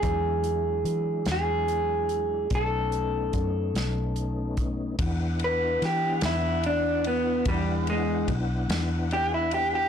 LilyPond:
<<
  \new Staff \with { instrumentName = "Clean electric guitar" } { \time 12/8 \key e \mixolydian \tempo 4. = 49 gis'4. gis'4. a'2~ a'8 r8 | r8 b'8 g'8 e'8 d'8 b8 g8 gis8 r4 g'16 e'16 g'16 g'16 | }
  \new Staff \with { instrumentName = "Tonewheel organ" } { \time 12/8 \key e \mixolydian <fis gis d' e'>2. <a b cis' dis'>2. | <b d' e' fis''>1. | }
  \new Staff \with { instrumentName = "Fingered electric bass" } { \clef bass \time 12/8 \key e \mixolydian e,4 e8 e,4. b,,4 fis,8 b,,4. | e,4 e8 e,4. e,4 b,,8 e,4. | }
  \new DrumStaff \with { instrumentName = "Drums" } \drummode { \time 12/8 <hh bd>8 hh8 hh8 <hh sn>8 hh8 hh8 <hh bd>8 hh8 <hh bd>8 <hh sn>8 hh8 <hh bd>8 | <bd cymr>8 cymr8 <cymr sn>8 <cymr sn>8 cymr8 cymr8 <bd cymr>8 cymr8 <bd cymr>8 <cymr sn>8 cymr8 cymr8 | }
>>